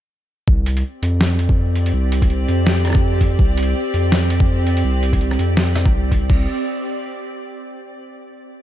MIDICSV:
0, 0, Header, 1, 4, 480
1, 0, Start_track
1, 0, Tempo, 363636
1, 632, Time_signature, 4, 2, 24, 8
1, 11378, End_track
2, 0, Start_track
2, 0, Title_t, "Synth drone"
2, 0, Program_c, 0, 95
2, 627, Note_on_c, 0, 60, 82
2, 628, Note_on_c, 0, 74, 94
2, 629, Note_on_c, 0, 67, 75
2, 8257, Note_off_c, 0, 60, 0
2, 8258, Note_off_c, 0, 67, 0
2, 8258, Note_off_c, 0, 74, 0
2, 11378, End_track
3, 0, Start_track
3, 0, Title_t, "Sub bass"
3, 0, Program_c, 1, 38
3, 628, Note_on_c, 1, 36, 100
3, 1097, Note_off_c, 1, 36, 0
3, 1352, Note_on_c, 1, 41, 97
3, 2539, Note_off_c, 1, 41, 0
3, 2553, Note_on_c, 1, 36, 104
3, 3020, Note_off_c, 1, 36, 0
3, 3032, Note_on_c, 1, 36, 80
3, 3256, Note_off_c, 1, 36, 0
3, 3278, Note_on_c, 1, 41, 98
3, 4462, Note_off_c, 1, 41, 0
3, 4477, Note_on_c, 1, 36, 104
3, 4942, Note_off_c, 1, 36, 0
3, 5200, Note_on_c, 1, 41, 97
3, 6383, Note_off_c, 1, 41, 0
3, 6397, Note_on_c, 1, 36, 102
3, 6862, Note_off_c, 1, 36, 0
3, 6876, Note_on_c, 1, 36, 80
3, 7098, Note_off_c, 1, 36, 0
3, 7117, Note_on_c, 1, 41, 94
3, 7730, Note_on_c, 1, 34, 82
3, 7749, Note_off_c, 1, 41, 0
3, 7837, Note_on_c, 1, 36, 83
3, 7856, Note_off_c, 1, 34, 0
3, 8301, Note_off_c, 1, 36, 0
3, 8313, Note_on_c, 1, 36, 101
3, 8536, Note_off_c, 1, 36, 0
3, 11378, End_track
4, 0, Start_track
4, 0, Title_t, "Drums"
4, 628, Note_on_c, 9, 36, 119
4, 760, Note_off_c, 9, 36, 0
4, 874, Note_on_c, 9, 42, 84
4, 1006, Note_off_c, 9, 42, 0
4, 1013, Note_on_c, 9, 46, 68
4, 1145, Note_off_c, 9, 46, 0
4, 1355, Note_on_c, 9, 42, 70
4, 1487, Note_off_c, 9, 42, 0
4, 1593, Note_on_c, 9, 38, 124
4, 1725, Note_off_c, 9, 38, 0
4, 1835, Note_on_c, 9, 42, 86
4, 1967, Note_off_c, 9, 42, 0
4, 1969, Note_on_c, 9, 36, 108
4, 2101, Note_off_c, 9, 36, 0
4, 2316, Note_on_c, 9, 42, 70
4, 2448, Note_off_c, 9, 42, 0
4, 2456, Note_on_c, 9, 46, 68
4, 2588, Note_off_c, 9, 46, 0
4, 2798, Note_on_c, 9, 42, 83
4, 2930, Note_off_c, 9, 42, 0
4, 2930, Note_on_c, 9, 36, 65
4, 2934, Note_on_c, 9, 46, 67
4, 3037, Note_on_c, 9, 42, 37
4, 3062, Note_off_c, 9, 36, 0
4, 3066, Note_off_c, 9, 46, 0
4, 3169, Note_off_c, 9, 42, 0
4, 3279, Note_on_c, 9, 42, 67
4, 3411, Note_off_c, 9, 42, 0
4, 3518, Note_on_c, 9, 38, 127
4, 3650, Note_off_c, 9, 38, 0
4, 3760, Note_on_c, 9, 37, 37
4, 3760, Note_on_c, 9, 42, 86
4, 3795, Note_off_c, 9, 37, 0
4, 3795, Note_on_c, 9, 37, 47
4, 3830, Note_off_c, 9, 37, 0
4, 3830, Note_on_c, 9, 37, 57
4, 3864, Note_off_c, 9, 37, 0
4, 3864, Note_on_c, 9, 37, 69
4, 3892, Note_off_c, 9, 42, 0
4, 3893, Note_on_c, 9, 36, 109
4, 3898, Note_off_c, 9, 37, 0
4, 3898, Note_on_c, 9, 37, 38
4, 4025, Note_off_c, 9, 36, 0
4, 4030, Note_off_c, 9, 37, 0
4, 4235, Note_on_c, 9, 36, 65
4, 4238, Note_on_c, 9, 46, 65
4, 4367, Note_off_c, 9, 36, 0
4, 4370, Note_off_c, 9, 46, 0
4, 4475, Note_on_c, 9, 36, 127
4, 4607, Note_off_c, 9, 36, 0
4, 4718, Note_on_c, 9, 42, 84
4, 4787, Note_on_c, 9, 46, 64
4, 4850, Note_off_c, 9, 42, 0
4, 4919, Note_off_c, 9, 46, 0
4, 5199, Note_on_c, 9, 42, 67
4, 5331, Note_off_c, 9, 42, 0
4, 5440, Note_on_c, 9, 38, 127
4, 5572, Note_off_c, 9, 38, 0
4, 5679, Note_on_c, 9, 42, 83
4, 5811, Note_off_c, 9, 42, 0
4, 5811, Note_on_c, 9, 36, 113
4, 5943, Note_off_c, 9, 36, 0
4, 6158, Note_on_c, 9, 42, 66
4, 6290, Note_off_c, 9, 42, 0
4, 6295, Note_on_c, 9, 46, 65
4, 6427, Note_off_c, 9, 46, 0
4, 6637, Note_on_c, 9, 42, 82
4, 6769, Note_off_c, 9, 42, 0
4, 6769, Note_on_c, 9, 36, 64
4, 6775, Note_on_c, 9, 46, 64
4, 6876, Note_on_c, 9, 42, 35
4, 6901, Note_off_c, 9, 36, 0
4, 6907, Note_off_c, 9, 46, 0
4, 7008, Note_off_c, 9, 42, 0
4, 7013, Note_on_c, 9, 37, 60
4, 7116, Note_on_c, 9, 42, 66
4, 7145, Note_off_c, 9, 37, 0
4, 7248, Note_off_c, 9, 42, 0
4, 7353, Note_on_c, 9, 38, 127
4, 7485, Note_off_c, 9, 38, 0
4, 7596, Note_on_c, 9, 37, 76
4, 7596, Note_on_c, 9, 42, 81
4, 7728, Note_off_c, 9, 37, 0
4, 7728, Note_off_c, 9, 42, 0
4, 7729, Note_on_c, 9, 36, 110
4, 7733, Note_on_c, 9, 37, 36
4, 7861, Note_off_c, 9, 36, 0
4, 7865, Note_off_c, 9, 37, 0
4, 8072, Note_on_c, 9, 36, 64
4, 8076, Note_on_c, 9, 46, 65
4, 8204, Note_off_c, 9, 36, 0
4, 8208, Note_off_c, 9, 46, 0
4, 8312, Note_on_c, 9, 36, 106
4, 8312, Note_on_c, 9, 49, 90
4, 8444, Note_off_c, 9, 36, 0
4, 8444, Note_off_c, 9, 49, 0
4, 11378, End_track
0, 0, End_of_file